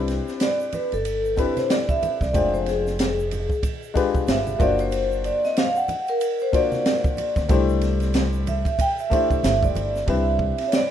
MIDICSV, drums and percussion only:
0, 0, Header, 1, 2, 480
1, 0, Start_track
1, 0, Key_signature, 0, "major"
1, 0, Tempo, 645161
1, 1741, Time_signature, 4, 2, 24, 8
1, 8116, End_track
2, 0, Start_track
2, 0, Title_t, "Drums"
2, 58, Note_on_c, 9, 51, 54
2, 65, Note_on_c, 9, 82, 40
2, 68, Note_on_c, 9, 38, 37
2, 133, Note_off_c, 9, 51, 0
2, 140, Note_off_c, 9, 82, 0
2, 143, Note_off_c, 9, 38, 0
2, 208, Note_on_c, 9, 82, 45
2, 211, Note_on_c, 9, 38, 32
2, 282, Note_off_c, 9, 82, 0
2, 285, Note_off_c, 9, 38, 0
2, 297, Note_on_c, 9, 44, 52
2, 297, Note_on_c, 9, 51, 70
2, 303, Note_on_c, 9, 82, 53
2, 305, Note_on_c, 9, 38, 99
2, 372, Note_off_c, 9, 44, 0
2, 372, Note_off_c, 9, 51, 0
2, 377, Note_off_c, 9, 82, 0
2, 379, Note_off_c, 9, 38, 0
2, 449, Note_on_c, 9, 82, 49
2, 523, Note_off_c, 9, 82, 0
2, 540, Note_on_c, 9, 51, 59
2, 542, Note_on_c, 9, 64, 65
2, 542, Note_on_c, 9, 82, 49
2, 614, Note_off_c, 9, 51, 0
2, 617, Note_off_c, 9, 64, 0
2, 617, Note_off_c, 9, 82, 0
2, 684, Note_on_c, 9, 51, 44
2, 692, Note_on_c, 9, 82, 41
2, 759, Note_off_c, 9, 51, 0
2, 766, Note_off_c, 9, 82, 0
2, 781, Note_on_c, 9, 51, 75
2, 784, Note_on_c, 9, 82, 66
2, 855, Note_off_c, 9, 51, 0
2, 858, Note_off_c, 9, 82, 0
2, 930, Note_on_c, 9, 82, 43
2, 1005, Note_off_c, 9, 82, 0
2, 1020, Note_on_c, 9, 82, 46
2, 1023, Note_on_c, 9, 36, 83
2, 1030, Note_on_c, 9, 51, 61
2, 1095, Note_off_c, 9, 82, 0
2, 1098, Note_off_c, 9, 36, 0
2, 1104, Note_off_c, 9, 51, 0
2, 1166, Note_on_c, 9, 63, 63
2, 1166, Note_on_c, 9, 82, 47
2, 1167, Note_on_c, 9, 51, 42
2, 1173, Note_on_c, 9, 38, 34
2, 1241, Note_off_c, 9, 51, 0
2, 1241, Note_off_c, 9, 63, 0
2, 1241, Note_off_c, 9, 82, 0
2, 1248, Note_off_c, 9, 38, 0
2, 1266, Note_on_c, 9, 44, 50
2, 1266, Note_on_c, 9, 51, 66
2, 1267, Note_on_c, 9, 82, 64
2, 1268, Note_on_c, 9, 38, 113
2, 1340, Note_off_c, 9, 44, 0
2, 1340, Note_off_c, 9, 51, 0
2, 1341, Note_off_c, 9, 82, 0
2, 1342, Note_off_c, 9, 38, 0
2, 1405, Note_on_c, 9, 36, 90
2, 1405, Note_on_c, 9, 63, 60
2, 1405, Note_on_c, 9, 82, 44
2, 1479, Note_off_c, 9, 36, 0
2, 1479, Note_off_c, 9, 63, 0
2, 1479, Note_off_c, 9, 82, 0
2, 1507, Note_on_c, 9, 64, 65
2, 1507, Note_on_c, 9, 82, 45
2, 1509, Note_on_c, 9, 51, 60
2, 1582, Note_off_c, 9, 64, 0
2, 1582, Note_off_c, 9, 82, 0
2, 1583, Note_off_c, 9, 51, 0
2, 1643, Note_on_c, 9, 36, 92
2, 1651, Note_on_c, 9, 82, 45
2, 1655, Note_on_c, 9, 38, 35
2, 1718, Note_off_c, 9, 36, 0
2, 1725, Note_off_c, 9, 82, 0
2, 1729, Note_off_c, 9, 38, 0
2, 1744, Note_on_c, 9, 36, 115
2, 1744, Note_on_c, 9, 82, 58
2, 1747, Note_on_c, 9, 51, 66
2, 1819, Note_off_c, 9, 36, 0
2, 1819, Note_off_c, 9, 82, 0
2, 1821, Note_off_c, 9, 51, 0
2, 1892, Note_on_c, 9, 82, 44
2, 1967, Note_off_c, 9, 82, 0
2, 1981, Note_on_c, 9, 51, 53
2, 1991, Note_on_c, 9, 38, 37
2, 1993, Note_on_c, 9, 82, 45
2, 2055, Note_off_c, 9, 51, 0
2, 2066, Note_off_c, 9, 38, 0
2, 2068, Note_off_c, 9, 82, 0
2, 2134, Note_on_c, 9, 38, 33
2, 2135, Note_on_c, 9, 82, 44
2, 2208, Note_off_c, 9, 38, 0
2, 2209, Note_off_c, 9, 82, 0
2, 2225, Note_on_c, 9, 44, 51
2, 2225, Note_on_c, 9, 51, 74
2, 2228, Note_on_c, 9, 82, 55
2, 2233, Note_on_c, 9, 38, 108
2, 2299, Note_off_c, 9, 44, 0
2, 2299, Note_off_c, 9, 51, 0
2, 2302, Note_off_c, 9, 82, 0
2, 2307, Note_off_c, 9, 38, 0
2, 2374, Note_on_c, 9, 82, 47
2, 2449, Note_off_c, 9, 82, 0
2, 2465, Note_on_c, 9, 51, 60
2, 2471, Note_on_c, 9, 64, 64
2, 2471, Note_on_c, 9, 82, 46
2, 2539, Note_off_c, 9, 51, 0
2, 2546, Note_off_c, 9, 64, 0
2, 2546, Note_off_c, 9, 82, 0
2, 2600, Note_on_c, 9, 36, 75
2, 2614, Note_on_c, 9, 82, 39
2, 2675, Note_off_c, 9, 36, 0
2, 2688, Note_off_c, 9, 82, 0
2, 2700, Note_on_c, 9, 36, 87
2, 2701, Note_on_c, 9, 51, 75
2, 2709, Note_on_c, 9, 82, 69
2, 2774, Note_off_c, 9, 36, 0
2, 2776, Note_off_c, 9, 51, 0
2, 2783, Note_off_c, 9, 82, 0
2, 2848, Note_on_c, 9, 82, 43
2, 2922, Note_off_c, 9, 82, 0
2, 2943, Note_on_c, 9, 36, 84
2, 2943, Note_on_c, 9, 82, 47
2, 2951, Note_on_c, 9, 51, 68
2, 3017, Note_off_c, 9, 36, 0
2, 3017, Note_off_c, 9, 82, 0
2, 3026, Note_off_c, 9, 51, 0
2, 3084, Note_on_c, 9, 36, 87
2, 3088, Note_on_c, 9, 63, 64
2, 3088, Note_on_c, 9, 82, 48
2, 3158, Note_off_c, 9, 36, 0
2, 3162, Note_off_c, 9, 63, 0
2, 3162, Note_off_c, 9, 82, 0
2, 3181, Note_on_c, 9, 82, 66
2, 3186, Note_on_c, 9, 44, 46
2, 3186, Note_on_c, 9, 51, 68
2, 3188, Note_on_c, 9, 38, 105
2, 3255, Note_off_c, 9, 82, 0
2, 3260, Note_off_c, 9, 44, 0
2, 3260, Note_off_c, 9, 51, 0
2, 3262, Note_off_c, 9, 38, 0
2, 3325, Note_on_c, 9, 63, 66
2, 3325, Note_on_c, 9, 82, 46
2, 3399, Note_off_c, 9, 63, 0
2, 3399, Note_off_c, 9, 82, 0
2, 3421, Note_on_c, 9, 36, 103
2, 3421, Note_on_c, 9, 64, 67
2, 3421, Note_on_c, 9, 82, 46
2, 3426, Note_on_c, 9, 51, 60
2, 3495, Note_off_c, 9, 36, 0
2, 3496, Note_off_c, 9, 64, 0
2, 3496, Note_off_c, 9, 82, 0
2, 3500, Note_off_c, 9, 51, 0
2, 3561, Note_on_c, 9, 82, 47
2, 3563, Note_on_c, 9, 51, 42
2, 3635, Note_off_c, 9, 82, 0
2, 3637, Note_off_c, 9, 51, 0
2, 3658, Note_on_c, 9, 82, 61
2, 3661, Note_on_c, 9, 51, 68
2, 3732, Note_off_c, 9, 82, 0
2, 3736, Note_off_c, 9, 51, 0
2, 3809, Note_on_c, 9, 82, 46
2, 3883, Note_off_c, 9, 82, 0
2, 3900, Note_on_c, 9, 51, 53
2, 3906, Note_on_c, 9, 82, 43
2, 3974, Note_off_c, 9, 51, 0
2, 3980, Note_off_c, 9, 82, 0
2, 4049, Note_on_c, 9, 82, 45
2, 4055, Note_on_c, 9, 38, 34
2, 4124, Note_off_c, 9, 82, 0
2, 4130, Note_off_c, 9, 38, 0
2, 4141, Note_on_c, 9, 44, 53
2, 4141, Note_on_c, 9, 51, 74
2, 4143, Note_on_c, 9, 82, 57
2, 4149, Note_on_c, 9, 38, 111
2, 4215, Note_off_c, 9, 44, 0
2, 4215, Note_off_c, 9, 51, 0
2, 4218, Note_off_c, 9, 82, 0
2, 4223, Note_off_c, 9, 38, 0
2, 4282, Note_on_c, 9, 82, 47
2, 4357, Note_off_c, 9, 82, 0
2, 4377, Note_on_c, 9, 64, 67
2, 4377, Note_on_c, 9, 82, 49
2, 4382, Note_on_c, 9, 51, 59
2, 4451, Note_off_c, 9, 64, 0
2, 4451, Note_off_c, 9, 82, 0
2, 4456, Note_off_c, 9, 51, 0
2, 4518, Note_on_c, 9, 82, 39
2, 4525, Note_on_c, 9, 51, 43
2, 4593, Note_off_c, 9, 82, 0
2, 4600, Note_off_c, 9, 51, 0
2, 4617, Note_on_c, 9, 82, 72
2, 4620, Note_on_c, 9, 51, 74
2, 4691, Note_off_c, 9, 82, 0
2, 4695, Note_off_c, 9, 51, 0
2, 4756, Note_on_c, 9, 82, 42
2, 4831, Note_off_c, 9, 82, 0
2, 4859, Note_on_c, 9, 82, 49
2, 4860, Note_on_c, 9, 36, 86
2, 4867, Note_on_c, 9, 51, 68
2, 4933, Note_off_c, 9, 82, 0
2, 4934, Note_off_c, 9, 36, 0
2, 4942, Note_off_c, 9, 51, 0
2, 4999, Note_on_c, 9, 63, 68
2, 4999, Note_on_c, 9, 82, 47
2, 5010, Note_on_c, 9, 38, 34
2, 5073, Note_off_c, 9, 63, 0
2, 5073, Note_off_c, 9, 82, 0
2, 5084, Note_off_c, 9, 38, 0
2, 5101, Note_on_c, 9, 44, 50
2, 5101, Note_on_c, 9, 51, 69
2, 5102, Note_on_c, 9, 82, 63
2, 5103, Note_on_c, 9, 38, 110
2, 5176, Note_off_c, 9, 44, 0
2, 5176, Note_off_c, 9, 51, 0
2, 5177, Note_off_c, 9, 82, 0
2, 5178, Note_off_c, 9, 38, 0
2, 5241, Note_on_c, 9, 36, 97
2, 5242, Note_on_c, 9, 63, 65
2, 5242, Note_on_c, 9, 82, 44
2, 5315, Note_off_c, 9, 36, 0
2, 5316, Note_off_c, 9, 63, 0
2, 5316, Note_off_c, 9, 82, 0
2, 5335, Note_on_c, 9, 64, 67
2, 5335, Note_on_c, 9, 82, 47
2, 5343, Note_on_c, 9, 51, 66
2, 5409, Note_off_c, 9, 64, 0
2, 5409, Note_off_c, 9, 82, 0
2, 5417, Note_off_c, 9, 51, 0
2, 5477, Note_on_c, 9, 36, 100
2, 5478, Note_on_c, 9, 82, 50
2, 5485, Note_on_c, 9, 38, 37
2, 5551, Note_off_c, 9, 36, 0
2, 5552, Note_off_c, 9, 82, 0
2, 5560, Note_off_c, 9, 38, 0
2, 5574, Note_on_c, 9, 51, 68
2, 5576, Note_on_c, 9, 82, 59
2, 5577, Note_on_c, 9, 36, 106
2, 5648, Note_off_c, 9, 51, 0
2, 5650, Note_off_c, 9, 82, 0
2, 5651, Note_off_c, 9, 36, 0
2, 5723, Note_on_c, 9, 82, 47
2, 5797, Note_off_c, 9, 82, 0
2, 5814, Note_on_c, 9, 51, 59
2, 5819, Note_on_c, 9, 82, 42
2, 5824, Note_on_c, 9, 38, 37
2, 5889, Note_off_c, 9, 51, 0
2, 5893, Note_off_c, 9, 82, 0
2, 5899, Note_off_c, 9, 38, 0
2, 5952, Note_on_c, 9, 51, 45
2, 5962, Note_on_c, 9, 82, 48
2, 5967, Note_on_c, 9, 38, 32
2, 6027, Note_off_c, 9, 51, 0
2, 6036, Note_off_c, 9, 82, 0
2, 6041, Note_off_c, 9, 38, 0
2, 6054, Note_on_c, 9, 82, 58
2, 6055, Note_on_c, 9, 44, 59
2, 6055, Note_on_c, 9, 51, 77
2, 6063, Note_on_c, 9, 38, 106
2, 6129, Note_off_c, 9, 82, 0
2, 6130, Note_off_c, 9, 44, 0
2, 6130, Note_off_c, 9, 51, 0
2, 6138, Note_off_c, 9, 38, 0
2, 6200, Note_on_c, 9, 82, 47
2, 6274, Note_off_c, 9, 82, 0
2, 6302, Note_on_c, 9, 51, 63
2, 6302, Note_on_c, 9, 64, 67
2, 6302, Note_on_c, 9, 82, 54
2, 6376, Note_off_c, 9, 51, 0
2, 6377, Note_off_c, 9, 64, 0
2, 6377, Note_off_c, 9, 82, 0
2, 6437, Note_on_c, 9, 36, 87
2, 6437, Note_on_c, 9, 82, 42
2, 6444, Note_on_c, 9, 51, 43
2, 6512, Note_off_c, 9, 36, 0
2, 6512, Note_off_c, 9, 82, 0
2, 6519, Note_off_c, 9, 51, 0
2, 6538, Note_on_c, 9, 36, 96
2, 6539, Note_on_c, 9, 82, 69
2, 6543, Note_on_c, 9, 51, 80
2, 6612, Note_off_c, 9, 36, 0
2, 6614, Note_off_c, 9, 82, 0
2, 6617, Note_off_c, 9, 51, 0
2, 6684, Note_on_c, 9, 82, 45
2, 6758, Note_off_c, 9, 82, 0
2, 6781, Note_on_c, 9, 36, 85
2, 6783, Note_on_c, 9, 64, 68
2, 6783, Note_on_c, 9, 82, 48
2, 6791, Note_on_c, 9, 51, 71
2, 6856, Note_off_c, 9, 36, 0
2, 6857, Note_off_c, 9, 64, 0
2, 6857, Note_off_c, 9, 82, 0
2, 6866, Note_off_c, 9, 51, 0
2, 6923, Note_on_c, 9, 36, 89
2, 6928, Note_on_c, 9, 63, 67
2, 6928, Note_on_c, 9, 82, 46
2, 6997, Note_off_c, 9, 36, 0
2, 7002, Note_off_c, 9, 63, 0
2, 7002, Note_off_c, 9, 82, 0
2, 7024, Note_on_c, 9, 82, 67
2, 7025, Note_on_c, 9, 44, 51
2, 7025, Note_on_c, 9, 51, 69
2, 7027, Note_on_c, 9, 38, 104
2, 7099, Note_off_c, 9, 44, 0
2, 7099, Note_off_c, 9, 51, 0
2, 7099, Note_off_c, 9, 82, 0
2, 7101, Note_off_c, 9, 38, 0
2, 7162, Note_on_c, 9, 36, 93
2, 7168, Note_on_c, 9, 63, 63
2, 7168, Note_on_c, 9, 82, 47
2, 7236, Note_off_c, 9, 36, 0
2, 7242, Note_off_c, 9, 63, 0
2, 7242, Note_off_c, 9, 82, 0
2, 7257, Note_on_c, 9, 64, 69
2, 7257, Note_on_c, 9, 82, 46
2, 7264, Note_on_c, 9, 51, 59
2, 7332, Note_off_c, 9, 64, 0
2, 7332, Note_off_c, 9, 82, 0
2, 7338, Note_off_c, 9, 51, 0
2, 7407, Note_on_c, 9, 82, 50
2, 7408, Note_on_c, 9, 38, 38
2, 7482, Note_off_c, 9, 82, 0
2, 7483, Note_off_c, 9, 38, 0
2, 7497, Note_on_c, 9, 36, 107
2, 7497, Note_on_c, 9, 51, 67
2, 7571, Note_off_c, 9, 36, 0
2, 7571, Note_off_c, 9, 51, 0
2, 7731, Note_on_c, 9, 36, 93
2, 7806, Note_off_c, 9, 36, 0
2, 7874, Note_on_c, 9, 51, 60
2, 7888, Note_on_c, 9, 38, 31
2, 7948, Note_off_c, 9, 51, 0
2, 7962, Note_off_c, 9, 38, 0
2, 7976, Note_on_c, 9, 44, 54
2, 7976, Note_on_c, 9, 51, 76
2, 7984, Note_on_c, 9, 38, 107
2, 8051, Note_off_c, 9, 44, 0
2, 8051, Note_off_c, 9, 51, 0
2, 8058, Note_off_c, 9, 38, 0
2, 8116, End_track
0, 0, End_of_file